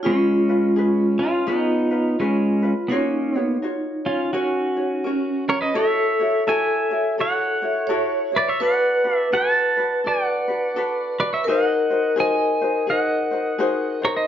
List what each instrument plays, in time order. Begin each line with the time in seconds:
Already playing: vibraphone F#4
0.03 pedal steel guitar G#3 C#4, ukulele C#4 F4 G#4 B4, vibraphone F4
0.49 ukulele C#4 F4 B4
0.76 ukulele C#4 F4 G#4 B4
1.19 pedal steel guitar C#4 F4, ukulele C#4 F4 B4
1.47 pedal steel guitar B3 D#4, ukulele C#4 F4 G#4 B4
1.91 ukulele C#4 F4 B4
2.19 pedal steel guitar G#3 C#4, ukulele C#4 F4 G#4 B4
2.62 ukulele C#4 F4 B4
2.88 pedal steel guitar A#3 C#4, vibraphone D#4, ukulele F4 F#4 A#4 C#5
3.35 pedal steel guitar B3, ukulele F4 F#4 C#5
3.62 ukulele F4 F#4 A#4 C#5
4.06 pedal steel guitar C#4 F4, ukulele F4 C#5
4.33 pedal steel guitar C#4 F#4, ukulele F#4 A#4 C#5
4.76 ukulele F#4 C#5
5.04 vibraphone C#4, ukulele F#4 A#4 C#5
5.48 ukulele F4 F#4 C#5, pedal steel guitar A#4 C#5
5.61 pedal steel guitar B4 D#5
5.74 ukulele E4 F#4 A4 C#5, vibraphone A4, pedal steel guitar C#5 E5
6.20 ukulele E4 F#4 C#5
6.47 ukulele E4 F#4 A4 C#5, pedal steel guitar E5 G#5
6.91 ukulele E4 F#4 C#5
7.18 ukulele E4 F#4 A4 C#5, pedal steel guitar C#5 F#5
7.62 ukulele E4 F#4 C#5
7.87 ukulele E4 F#4 A4 C#5, vibraphone C#5
8.32 ukulele E4 F#4 C#5
8.36 pedal steel guitar B4 D5
8.48 pedal steel guitar C#5 E5
8.60 ukulele D4 F#4 A4 B4, vibraphone B4, pedal steel guitar D5 F#5
9.04 ukulele D4 F#4 B4
9.17 pedal steel guitar E5
9.32 ukulele D4 F#4 A4 B4, pedal steel guitar F#5 A5
9.77 ukulele D4 F#4 B4
10.04 ukulele D4 F#4 A4 B4, pedal steel guitar D5 F#5
10.48 ukulele D4 F#4 B4
10.76 ukulele D4 F#4 A4 B4
11.20 ukulele D4 F#4 B4, pedal steel guitar B4 D5
11.33 pedal steel guitar C#5 E5
11.44 ukulele F#4 G#4, vibraphone A#4, pedal steel guitar D#5
11.48 ukulele D#4 C5, pedal steel guitar F#5
11.90 ukulele D#4 F#4 C5
12.16 ukulele D#4 F#4 G#4 C5
12.20 pedal steel guitar D#5 G#5
12.61 ukulele D#4 F#4 C5
12.87 ukulele D#4 F#4 G#4 C5, pedal steel guitar D#5 F#5
13.31 ukulele D#4 F#4 C5
13.58 ukulele D#4 F#4 G#4 C5
14.02 ukulele D#4 F#4 C5, pedal steel guitar A#4 C#5
14.17 pedal steel guitar C5 D#5